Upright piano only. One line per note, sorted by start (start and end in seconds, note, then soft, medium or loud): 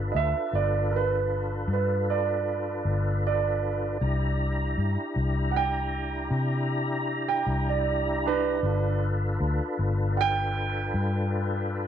0.12 0.16 D#5 medium
0.16 0.53 E5 medium
0.55 0.92 D5 medium
0.91 0.95 A#4 medium
0.96 1.69 B4 medium
1.73 2.09 B4 medium
2.10 3.21 D5 medium
3.27 4.76 D5 medium
5.51 5.56 F#5 medium
5.56 7.26 G5 medium
7.28 7.66 G5 medium
7.69 8.25 D5 medium
8.26 8.99 D4 medium
8.26 9.02 B4 medium
10.17 10.21 F#5 medium
10.17 11.87 G5 loud